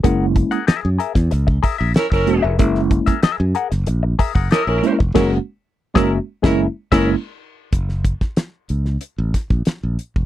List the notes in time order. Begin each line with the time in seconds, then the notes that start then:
0.04 F#1 G#3 A#3 C#4 E4 G#4 A#4 F#5, kick, closed hi-hat
0.36 muted clean electric guitar stroke, kick, closed hi-hat
0.51 G#4 A#4 F#5, closed hi-hat
0.67 G#4 A#4 E5, muted fingered electric bass stroke, snare, closed hi-hat
0.83 F#2, muted clean electric guitar stroke
0.98 G#4 A#4 E5, closed hi-hat
1.15 E2, muted clean electric guitar stroke, kick, snare, closed hi-hat
1.31 C#2, muted clean electric guitar stroke, closed hi-hat
1.47 muted clean electric guitar stroke, kick
1.63 G#4 A#4 E5, kick, open hi-hat
1.78 A#1 G#4 A#4 E5
1.94 C#4 E4 A#4, muted clean electric guitar stroke, snare, closed hi-hat
2.10 F#1 C#4 E4 A#4, muted clean electric guitar stroke, kick, snare
2.26 E1 G#3 A#3 C#4 F#4, closed hi-hat
2.42 F1 G#4 A#4 E5
2.59 F#1 G#3 A#3 C#4 E4 G#4 A#4 E5, kick, closed hi-hat
2.75 snare
2.91 muted clean electric guitar stroke, kick, closed hi-hat
3.06 G#4 A#4 E5, kick, snare, closed hi-hat
3.22 G#4 A#4 E5, muted fingered electric bass stroke, snare, closed hi-hat
3.38 F#2, muted clean electric guitar stroke
3.55 G#4 A#4 F#5, closed hi-hat
3.71 F#1, muted clean electric guitar stroke, snare, closed hi-hat
3.87 A#1, muted clean electric guitar stroke, closed hi-hat
4.03 muted clean electric guitar stroke
4.19 G#4 A#4 E5, kick, open hi-hat
4.35 F#1 G#4 A#4 F#5, kick
4.51 C#4 E4 G4 A4 A#4 D#5, snare, closed hi-hat
4.63 G#4 A#4 E5
4.67 A#1 C#4 E4 A#4
4.82 G#3 A#3 C#4 E4, muted clean electric guitar stroke, closed hi-hat
4.99 F1, muted clean electric guitar stroke, kick
5.14 F#1 G#3 A#3 C#4 E4 F#4 G#4 A#4 F#5, kick, snare, crash
5.94 F#1 G#3 A#3 C#4 E4 F#4 G#4 A#4 E5, kick, snare
6.42 F#1 G#3 A#3 C#4 E4 G#4 A#4 E5, kick, snare
6.91 F#1 G#3 A#3 C#4 E4 G#4 A#4 E5, kick, snare, crash
7.72 F#1, kick, closed hi-hat
7.89 snare
8.05 kick, closed hi-hat
8.21 kick, snare
8.37 snare, closed hi-hat
8.69 C#2, closed hi-hat
8.85 snare
9.01 closed hi-hat
9.18 A1
9.34 kick, snare, closed hi-hat
9.50 A#1, kick
9.65 muted fingered electric bass stroke, snare, closed hi-hat
9.83 A#1
9.99 closed hi-hat
10.16 F1, kick